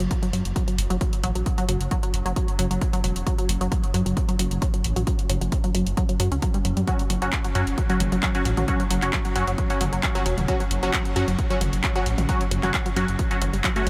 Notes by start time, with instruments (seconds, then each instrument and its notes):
Already playing: ambient pad F#3 C#4
0.00 detuned saw bass F#1, synth arpeggio sound F#3, closed hi-hat
0.11 kick, closed hi-hat
0.23 synth arpeggio sound F#3, closed hi-hat
0.33 detuned saw bass F#2, synth arpeggio sound F#3, open hi-hat
0.45 detuned saw bass F#1, closed hi-hat
0.56 synth arpeggio sound F#3, kick, closed hi-hat
0.68 synth arpeggio sound F#3, closed hi-hat
0.78 detuned saw bass F#1, open hi-hat
0.90 detuned saw bass F#1, synth arpeggio sound F#3, closed hi-hat
1.01 synth arpeggio sound F#3, kick, closed hi-hat
1.13 closed hi-hat
1.24 detuned saw bass A1, synth arpeggio sound F#3, open hi-hat
1.35 detuned saw bass A1, synth arpeggio sound F#3, closed hi-hat
1.46 kick, closed hi-hat
1.58 synth arpeggio sound F#3, closed hi-hat
1.69 detuned saw bass F#1, synth arpeggio sound F#3, open hi-hat
1.81 detuned saw bass F#1, closed hi-hat
1.91 synth arpeggio sound F#3, kick, closed hi-hat
2.03 synth arpeggio sound F#3, closed hi-hat
2.14 detuned saw bass F#1, open hi-hat
2.26 detuned saw bass F#1, synth arpeggio sound F#3, closed hi-hat
2.36 synth arpeggio sound F#3, kick, closed hi-hat
2.48 closed hi-hat
2.59 detuned saw bass F#1, synth arpeggio sound F#3, open hi-hat
2.71 detuned saw bass F#1, synth arpeggio sound F#3, closed hi-hat
2.81 kick, closed hi-hat
2.93 synth arpeggio sound F#3, closed hi-hat
3.04 detuned saw bass E1, synth arpeggio sound F#3, open hi-hat
3.16 detuned saw bass E1, closed hi-hat
3.27 synth arpeggio sound F#3, kick, closed hi-hat
3.38 synth arpeggio sound F#3, closed hi-hat
3.49 detuned saw bass F#1, open hi-hat
3.61 detuned saw bass F#1, synth arpeggio sound F#3, closed hi-hat
3.72 synth arpeggio sound F#3, kick, closed hi-hat
3.84 closed hi-hat
3.94 detuned saw bass F#2, synth arpeggio sound F#3, open hi-hat
4.06 detuned saw bass F#1, synth arpeggio sound F#3, closed hi-hat
4.17 kick, closed hi-hat
4.29 synth arpeggio sound F#3, closed hi-hat
4.39 detuned saw bass F#1, synth arpeggio sound F#3, open hi-hat
4.51 detuned saw bass F#1, closed hi-hat
4.62 synth arpeggio sound F#3, kick, closed hi-hat
4.74 synth arpeggio sound F#3, closed hi-hat
4.84 detuned saw bass A1, open hi-hat
4.96 detuned saw bass A1, synth arpeggio sound F#3, closed hi-hat
5.07 synth arpeggio sound F#3, kick, closed hi-hat
5.19 closed hi-hat
5.30 detuned saw bass F#1, synth arpeggio sound F#3, open hi-hat
5.41 detuned saw bass F#1, synth arpeggio sound F#3, closed hi-hat
5.52 kick, closed hi-hat
5.64 synth arpeggio sound F#3, closed hi-hat
5.75 detuned saw bass F#1, synth arpeggio sound F#3, open hi-hat
5.86 detuned saw bass F#1, closed hi-hat
5.97 synth arpeggio sound F#3, kick, closed hi-hat
6.09 synth arpeggio sound F#3, closed hi-hat
6.20 detuned saw bass F#2, synth arpeggio sound F#3, open hi-hat
6.32 detuned saw bass C#2, synth arpeggio sound C#4, closed hi-hat
6.42 synth arpeggio sound F#3, kick, closed hi-hat
6.54 synth arpeggio sound G3, closed hi-hat
6.65 detuned saw bass F#1, synth arpeggio sound F#3, open hi-hat
6.77 detuned saw bass F#2, synth arpeggio sound G3, closed hi-hat
6.87 synth arpeggio sound F#3, supersaw synth F#3 C#4 F#4, kick, closed hi-hat
6.99 closed hi-hat
7.10 detuned saw bass F#1, synth arpeggio sound F#3, open hi-hat
7.22 detuned saw bass F#1, synth arpeggio sound F#3, supersaw synth F#3 C#4 F#4, closed hi-hat
7.33 kick, clap, closed hi-hat
7.44 synth arpeggio sound F#3, closed hi-hat
7.55 detuned saw bass F#2, synth arpeggio sound F#3, supersaw synth F#3 C#4 F#4, open hi-hat
7.67 detuned saw bass F#1, closed hi-hat
7.78 synth arpeggio sound F#3, kick, closed hi-hat
7.90 synth arpeggio sound F#3, supersaw synth F#3 C#4 F#4, closed hi-hat
8.00 detuned saw bass F#1, open hi-hat, mid tom
8.12 detuned saw bass F#1, synth arpeggio sound F#3, closed hi-hat
8.23 synth arpeggio sound F#3, kick, clap, closed hi-hat
8.35 supersaw synth F#3 C#4 F#4, closed hi-hat
8.45 detuned saw bass A1, synth arpeggio sound F#3, open hi-hat
8.57 detuned saw bass A1, synth arpeggio sound F#3, closed hi-hat, mid tom
8.68 supersaw synth F#3 C#4 F#4, kick, closed hi-hat
8.80 synth arpeggio sound F#3, closed hi-hat
8.91 detuned saw bass F#1, synth arpeggio sound F#3, open hi-hat
9.02 detuned saw bass F#1, supersaw synth F#3 C#4 F#4, clap, closed hi-hat
9.13 synth arpeggio sound F#3, kick, clap, closed hi-hat
9.25 synth arpeggio sound F#3, closed hi-hat
9.36 detuned saw bass F#1, supersaw synth F#3 C#4 F#4, open hi-hat
9.47 detuned saw bass F#1, synth arpeggio sound F#3, closed hi-hat
9.58 synth arpeggio sound F#3, kick, closed hi-hat
9.70 supersaw synth F#3 C#4 F#4, closed hi-hat
9.81 detuned saw bass F#1, synth arpeggio sound F#3, open hi-hat, mid tom
9.93 detuned saw bass F#1, synth arpeggio sound F#3, closed hi-hat
10.03 kick, clap, closed hi-hat
10.15 synth arpeggio sound F#3, supersaw synth F#3 C#4 F#4, closed hi-hat
10.26 detuned saw bass E1, synth arpeggio sound F#3, open hi-hat
10.38 detuned saw bass E1, closed hi-hat, mid tom
10.48 synth arpeggio sound F#3, supersaw synth F#3 C#4 F#4, kick, closed hi-hat
10.60 synth arpeggio sound F#3, closed hi-hat
10.71 detuned saw bass F#1, open hi-hat
10.83 detuned saw bass F#1, synth arpeggio sound F#3, supersaw synth F#3 C#4 F#4, closed hi-hat
10.93 synth arpeggio sound F#3, kick, clap, closed hi-hat
11.05 closed hi-hat
11.16 detuned saw bass F#2, synth arpeggio sound F#3, supersaw synth F#3 C#4 F#4, open hi-hat
11.28 detuned saw bass F#1, synth arpeggio sound F#3, closed hi-hat
11.39 kick, closed hi-hat
11.50 synth arpeggio sound F#3, supersaw synth F#3 C#4 F#4, closed hi-hat
11.61 detuned saw bass F#1, synth arpeggio sound F#3, open hi-hat, mid tom
11.73 detuned saw bass F#1, closed hi-hat
11.84 synth arpeggio sound F#3, kick, clap, closed hi-hat
11.96 synth arpeggio sound F#3, supersaw synth F#3 C#4 F#4, closed hi-hat
12.06 detuned saw bass A1, open hi-hat
12.18 detuned saw bass A1, synth arpeggio sound F#3, closed hi-hat, mid tom
12.29 synth arpeggio sound F#3, supersaw synth F#3 C#4 F#4, kick, closed hi-hat
12.41 closed hi-hat
12.51 detuned saw bass F#1, synth arpeggio sound F#3, open hi-hat
12.63 detuned saw bass F#1, synth arpeggio sound F#3, supersaw synth F#3 C#4 F#4, clap, closed hi-hat, mid tom
12.74 kick, clap, closed hi-hat
12.86 synth arpeggio sound F#3, closed hi-hat
12.96 detuned saw bass F#1, supersaw synth F#3 C#4 F#4, synth arpeggio sound F#3, open hi-hat
13.08 detuned saw bass F#1, closed hi-hat
13.19 synth arpeggio sound F#3, kick, closed hi-hat
13.31 supersaw synth F#3 C#4 F#4, synth arpeggio sound F#3, closed hi-hat
13.42 detuned saw bass F#1, synth arpeggio sound F#3, open hi-hat, mid tom
13.53 detuned saw bass F#1, synth arpeggio sound G3, closed hi-hat
13.64 synth arpeggio sound F#3, kick, clap, closed hi-hat
13.76 supersaw synth F#3 C#4 F#4, synth arpeggio sound A3, closed hi-hat